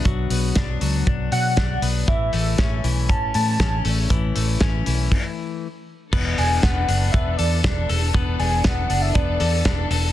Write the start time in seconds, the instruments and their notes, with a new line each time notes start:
Already playing: clean electric guitar B3 D4
0.05 fingered electric bass B1, clean electric guitar F#3, kick, closed hi-hat
0.30 fingered electric bass B1, clean electric guitar B3, open hi-hat
0.56 fingered electric bass B1, clean electric guitar D4, kick, snare, closed hi-hat
0.81 fingered electric bass C#2, clean electric guitar F#3, open hi-hat
1.07 fingered electric bass B1, clean electric guitar D4, kick, closed hi-hat
1.32 fingered electric bass B2, clean electric guitar F#3, soft synth lead F#5, open hi-hat
1.57 fingered electric bass B1, clean electric guitar D4, kick, snare, closed hi-hat
1.82 fingered electric bass B1, clean electric guitar B3, open hi-hat
2.08 fingered electric bass A1, clean electric guitar E3, soft synth lead E5, kick, closed hi-hat
2.33 fingered electric bass A1, clean electric guitar A3, open hi-hat
2.58 fingered electric bass A1, clean electric guitar C#4, kick, snare, closed hi-hat
2.84 fingered electric bass B1, clean electric guitar E3, open hi-hat
3.09 fingered electric bass A1, clean electric guitar C#4, soft synth lead A5, kick, closed hi-hat
3.34 fingered electric bass A2, clean electric guitar E3, soft synth lead A5, open hi-hat
3.60 fingered electric bass A1, clean electric guitar C#4, kick, snare, closed hi-hat
3.85 fingered electric bass A1, clean electric guitar A3, open hi-hat
4.10 fingered electric bass A1, clean electric guitar E3, kick, closed hi-hat
4.35 fingered electric bass A1, clean electric guitar A3, open hi-hat
4.60 fingered electric bass A1, clean electric guitar C#4, kick, snare, closed hi-hat
4.86 fingered electric bass B1, clean electric guitar E3, open hi-hat
5.12 kick, crash
6.12 fingered electric bass E1, string section E3 D4 A4, clean electric guitar B3, kick, crash
6.38 fingered electric bass E1, clean electric guitar D4, soft synth lead G#5, open hi-hat
6.63 fingered electric bass E1, clean electric guitar B3, soft synth lead F#5, kick, snare, closed hi-hat
6.88 fingered electric bass F#1, clean electric guitar D4, open hi-hat
7.12 fingered electric bass E1, clean electric guitar B3, soft synth lead E5, kick, closed hi-hat
7.37 fingered electric bass E2, clean electric guitar A4, soft synth lead D5, open hi-hat
7.64 fingered electric bass E1, clean electric guitar D4, kick, snare, closed hi-hat
7.89 fingered electric bass E1, clean electric guitar A4, open hi-hat
8.14 fingered electric bass E1, clean electric guitar B3, kick, closed hi-hat
8.39 fingered electric bass E1, clean electric guitar D4, soft synth lead G#5, open hi-hat
8.64 clean electric guitar B3, soft synth lead F#5, kick, snare, closed hi-hat
8.90 fingered electric bass F#1, clean electric guitar D4, open hi-hat
9.02 soft synth lead E5
9.14 fingered electric bass E1, clean electric guitar B3, soft synth lead D5, kick, closed hi-hat
9.40 fingered electric bass E2, clean electric guitar A4, open hi-hat
9.65 fingered electric bass E1, clean electric guitar D4, kick, snare, closed hi-hat
9.90 fingered electric bass E1, clean electric guitar A4, open hi-hat